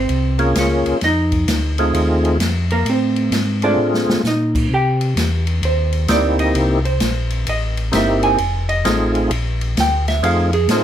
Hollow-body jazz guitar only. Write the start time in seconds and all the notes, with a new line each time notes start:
Already playing: C4 C5
0.59 C#4 C#5
1.04 D#4 D#5
2.72 A#3 A#4
2.90 C4 C5
3.64 D4 D5
4.27 D#4 D#5
4.74 G4 G5
5.65 C5
6.11 D5
6.40 D#5
6.85 C5
7.49 D#5
7.95 E5
8.24 G#5
8.69 D#5
9.80 G5
10.08 E5
10.25 F5
10.54 G#4
10.72 C5